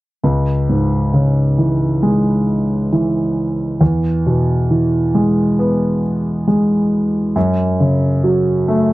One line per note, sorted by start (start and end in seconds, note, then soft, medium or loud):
0.23 3.77 C#2 soft
0.69 2.44 G#2 soft
1.14 2.88 C#3 soft
1.58 2.91 E3 soft
2.03 3.77 G#3 soft
2.92 3.79 E3 soft
3.81 7.31 E2 soft
4.26 6.00 B2 soft
4.71 6.44 E3 soft
5.15 6.46 G#3 soft
5.59 7.32 B3 soft
6.48 7.33 G#3 soft
7.36 8.93 F#2 soft
7.80 8.93 C#3 soft
8.24 8.93 F#3 soft
8.68 8.93 A3 soft